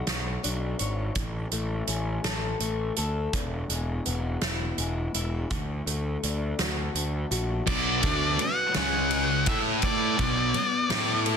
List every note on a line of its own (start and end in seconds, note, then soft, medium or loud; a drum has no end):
0.00 0.80 B2 medium
0.00 0.42 D4 medium
0.00 1.16 F#4 medium
0.07 0.37 B1 medium
0.07 0.78 C#5 medium
0.07 snare medium
0.07 closed hi-hat medium
0.43 0.73 B1 medium
0.43 1.16 D4 medium
0.43 closed hi-hat medium
0.79 1.09 G#1 medium
0.79 1.16 C#5 medium
0.79 closed hi-hat medium
1.15 1.45 A1 medium
1.15 2.97 A2 medium
1.15 kick medium
1.15 closed hi-hat medium
1.51 1.81 A1 medium
1.51 2.59 A3 medium
1.51 closed hi-hat medium
1.87 2.18 A1 medium
1.87 3.33 C#4 medium
1.87 closed hi-hat soft
2.24 2.54 A1 medium
2.24 2.96 A4 medium
2.24 snare loud
2.24 closed hi-hat medium
2.60 2.90 A1 medium
2.60 3.33 A3 medium
2.60 closed hi-hat medium
2.96 3.27 D2 medium
2.96 3.34 A4 medium
2.96 closed hi-hat medium
3.33 3.63 E1 medium
3.33 5.15 E2 medium
3.33 kick medium
3.33 closed hi-hat medium
3.69 3.99 E1 medium
3.69 4.77 G#3 medium
3.69 closed hi-hat soft
4.05 4.36 E1 medium
4.05 5.51 B3 medium
4.05 closed hi-hat soft
4.41 4.71 E1 medium
4.41 5.14 E4 medium
4.41 snare loud
4.41 closed hi-hat medium
4.78 5.07 E1 medium
4.78 5.51 G#3 medium
4.78 closed hi-hat soft
5.14 5.44 E1 medium
5.14 5.51 E4 medium
5.14 closed hi-hat medium
5.51 5.80 D2 medium
5.51 7.32 D3 medium
5.51 kick medium
5.51 closed hi-hat medium
5.86 6.16 D2 medium
5.86 6.94 A3 medium
5.86 closed hi-hat soft
6.23 6.52 D2 medium
6.23 7.68 D4 medium
6.23 closed hi-hat soft
6.59 6.88 D2 medium
6.59 7.30 F#4 medium
6.59 snare medium
6.59 closed hi-hat medium
6.94 7.24 D2 medium
6.94 7.67 A3 medium
6.94 closed hi-hat medium
7.31 7.60 A#1 medium
7.31 7.67 F#4 medium
7.31 closed hi-hat medium
7.66 8.01 B1 medium
7.66 8.01 B2 medium
7.66 8.75 B2 medium
7.66 8.01 F#3 medium
7.66 8.02 B3 loud
7.66 8.42 D5 medium
7.66 kick loud
7.66 crash loud
8.01 8.37 D2 medium
8.01 8.37 D3 medium
8.01 8.75 F#3 medium
8.01 8.37 A3 medium
8.01 8.38 D4 loud
8.01 kick medium
8.01 ride medium
8.39 8.75 B3 medium
8.39 8.76 F#5 medium
8.39 muted distorted electric guitar stroke medium
8.39 muted picked electric bass stroke soft
8.39 ride medium
8.74 9.44 C#2 medium
8.74 9.46 C#3 medium
8.74 9.45 G#3 loud
8.74 9.46 C#4 loud
8.74 9.48 F#5 loud
8.74 snare loud
8.74 ride medium
9.11 9.47 G#3 medium
9.11 ride medium
9.46 9.81 A2 medium
9.46 10.15 A2 medium
9.46 10.17 A3 medium
9.46 10.17 E4 medium
9.46 10.17 A4 medium
9.46 9.58 E5 medium
9.46 kick loud
9.46 ride medium
9.82 10.18 A2 medium
9.82 11.23 D5 medium
9.82 kick loud
9.82 ride medium
10.16 10.52 B1 medium
10.16 10.52 B2 medium
10.16 10.89 B2 medium
10.16 10.53 F#3 loud
10.16 10.53 B3 medium
10.16 kick loud
10.16 ride medium
10.54 10.90 B3 medium
10.54 muted distorted electric guitar stroke medium
10.54 muted picked electric bass stroke soft
10.54 ride medium
10.90 11.37 A2 medium
10.90 11.37 A3 loud
10.90 11.37 E4 loud
10.90 11.37 A4 loud
10.90 snare loud
10.90 ride loud
11.26 11.37 A3 medium
11.26 ride medium